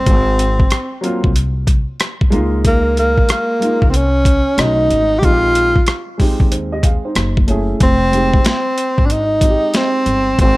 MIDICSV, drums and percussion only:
0, 0, Header, 1, 2, 480
1, 0, Start_track
1, 0, Key_signature, -4, "minor"
1, 0, Tempo, 645161
1, 48, Time_signature, 4, 2, 24, 8
1, 7866, End_track
2, 0, Start_track
2, 0, Title_t, "Drums"
2, 48, Note_on_c, 9, 42, 77
2, 49, Note_on_c, 9, 36, 107
2, 122, Note_off_c, 9, 42, 0
2, 123, Note_off_c, 9, 36, 0
2, 291, Note_on_c, 9, 42, 78
2, 365, Note_off_c, 9, 42, 0
2, 442, Note_on_c, 9, 36, 86
2, 517, Note_off_c, 9, 36, 0
2, 524, Note_on_c, 9, 42, 86
2, 534, Note_on_c, 9, 37, 91
2, 599, Note_off_c, 9, 42, 0
2, 609, Note_off_c, 9, 37, 0
2, 771, Note_on_c, 9, 42, 67
2, 846, Note_off_c, 9, 42, 0
2, 922, Note_on_c, 9, 36, 90
2, 996, Note_off_c, 9, 36, 0
2, 1009, Note_on_c, 9, 42, 104
2, 1084, Note_off_c, 9, 42, 0
2, 1243, Note_on_c, 9, 36, 96
2, 1246, Note_on_c, 9, 42, 80
2, 1317, Note_off_c, 9, 36, 0
2, 1321, Note_off_c, 9, 42, 0
2, 1485, Note_on_c, 9, 42, 86
2, 1492, Note_on_c, 9, 37, 104
2, 1560, Note_off_c, 9, 42, 0
2, 1567, Note_off_c, 9, 37, 0
2, 1646, Note_on_c, 9, 36, 91
2, 1720, Note_off_c, 9, 36, 0
2, 1726, Note_on_c, 9, 42, 55
2, 1800, Note_off_c, 9, 42, 0
2, 1968, Note_on_c, 9, 36, 95
2, 1968, Note_on_c, 9, 42, 75
2, 2043, Note_off_c, 9, 36, 0
2, 2043, Note_off_c, 9, 42, 0
2, 2211, Note_on_c, 9, 42, 74
2, 2285, Note_off_c, 9, 42, 0
2, 2362, Note_on_c, 9, 36, 78
2, 2437, Note_off_c, 9, 36, 0
2, 2445, Note_on_c, 9, 42, 87
2, 2455, Note_on_c, 9, 37, 98
2, 2520, Note_off_c, 9, 42, 0
2, 2530, Note_off_c, 9, 37, 0
2, 2694, Note_on_c, 9, 42, 72
2, 2768, Note_off_c, 9, 42, 0
2, 2842, Note_on_c, 9, 36, 81
2, 2916, Note_off_c, 9, 36, 0
2, 2930, Note_on_c, 9, 42, 93
2, 3004, Note_off_c, 9, 42, 0
2, 3163, Note_on_c, 9, 36, 98
2, 3168, Note_on_c, 9, 42, 82
2, 3238, Note_off_c, 9, 36, 0
2, 3242, Note_off_c, 9, 42, 0
2, 3407, Note_on_c, 9, 42, 95
2, 3414, Note_on_c, 9, 37, 100
2, 3481, Note_off_c, 9, 42, 0
2, 3488, Note_off_c, 9, 37, 0
2, 3649, Note_on_c, 9, 42, 57
2, 3724, Note_off_c, 9, 42, 0
2, 3889, Note_on_c, 9, 36, 93
2, 3891, Note_on_c, 9, 42, 69
2, 3964, Note_off_c, 9, 36, 0
2, 3965, Note_off_c, 9, 42, 0
2, 4131, Note_on_c, 9, 42, 78
2, 4206, Note_off_c, 9, 42, 0
2, 4282, Note_on_c, 9, 36, 84
2, 4357, Note_off_c, 9, 36, 0
2, 4364, Note_on_c, 9, 42, 84
2, 4374, Note_on_c, 9, 37, 108
2, 4438, Note_off_c, 9, 42, 0
2, 4448, Note_off_c, 9, 37, 0
2, 4610, Note_on_c, 9, 36, 79
2, 4611, Note_on_c, 9, 46, 48
2, 4684, Note_off_c, 9, 36, 0
2, 4685, Note_off_c, 9, 46, 0
2, 4761, Note_on_c, 9, 36, 81
2, 4836, Note_off_c, 9, 36, 0
2, 4849, Note_on_c, 9, 42, 97
2, 4923, Note_off_c, 9, 42, 0
2, 5082, Note_on_c, 9, 36, 84
2, 5085, Note_on_c, 9, 42, 81
2, 5157, Note_off_c, 9, 36, 0
2, 5159, Note_off_c, 9, 42, 0
2, 5323, Note_on_c, 9, 42, 85
2, 5329, Note_on_c, 9, 37, 87
2, 5397, Note_off_c, 9, 42, 0
2, 5404, Note_off_c, 9, 37, 0
2, 5485, Note_on_c, 9, 36, 92
2, 5559, Note_off_c, 9, 36, 0
2, 5564, Note_on_c, 9, 42, 54
2, 5639, Note_off_c, 9, 42, 0
2, 5806, Note_on_c, 9, 42, 76
2, 5807, Note_on_c, 9, 36, 106
2, 5881, Note_off_c, 9, 42, 0
2, 5882, Note_off_c, 9, 36, 0
2, 6050, Note_on_c, 9, 42, 75
2, 6125, Note_off_c, 9, 42, 0
2, 6202, Note_on_c, 9, 36, 93
2, 6276, Note_off_c, 9, 36, 0
2, 6284, Note_on_c, 9, 42, 86
2, 6294, Note_on_c, 9, 38, 105
2, 6358, Note_off_c, 9, 42, 0
2, 6368, Note_off_c, 9, 38, 0
2, 6530, Note_on_c, 9, 42, 79
2, 6604, Note_off_c, 9, 42, 0
2, 6681, Note_on_c, 9, 36, 88
2, 6755, Note_off_c, 9, 36, 0
2, 6769, Note_on_c, 9, 42, 88
2, 6844, Note_off_c, 9, 42, 0
2, 7002, Note_on_c, 9, 36, 86
2, 7005, Note_on_c, 9, 42, 89
2, 7077, Note_off_c, 9, 36, 0
2, 7079, Note_off_c, 9, 42, 0
2, 7244, Note_on_c, 9, 42, 88
2, 7251, Note_on_c, 9, 38, 100
2, 7318, Note_off_c, 9, 42, 0
2, 7325, Note_off_c, 9, 38, 0
2, 7485, Note_on_c, 9, 42, 59
2, 7559, Note_off_c, 9, 42, 0
2, 7728, Note_on_c, 9, 36, 106
2, 7728, Note_on_c, 9, 42, 78
2, 7802, Note_off_c, 9, 36, 0
2, 7802, Note_off_c, 9, 42, 0
2, 7866, End_track
0, 0, End_of_file